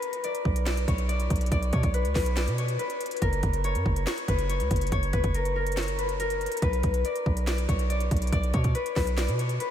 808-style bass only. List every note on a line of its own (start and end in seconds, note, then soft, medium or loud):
0.45 0.86 B1 loud
0.88 1.29 B1 loud
1.30 1.51 B1 loud
1.52 1.72 B1 loud
1.73 1.83 B2 loud
1.83 2.06 B1 loud
2.05 2.15 C#2 medium
2.15 2.49 B1 loud
2.47 2.78 B2 loud
3.22 3.42 F#1 loud
3.43 3.77 F#1 loud
3.75 3.85 F#2 loud
3.86 4.06 F#1 loud
4.28 4.62 F#1 loud
4.60 4.70 C#2 loud
4.71 4.91 F#1 loud
4.92 5.12 F#1 loud
5.13 5.23 F#1 loud
5.24 6.48 F#1 loud
6.62 6.83 B1 loud
6.84 7.04 B1 loud
7.26 7.67 B1 loud
7.69 8.10 B1 loud
8.11 8.32 B1 loud
8.33 8.53 B1 loud
8.54 8.74 B2 loud
8.96 9.30 B1 loud
9.28 9.59 B2 loud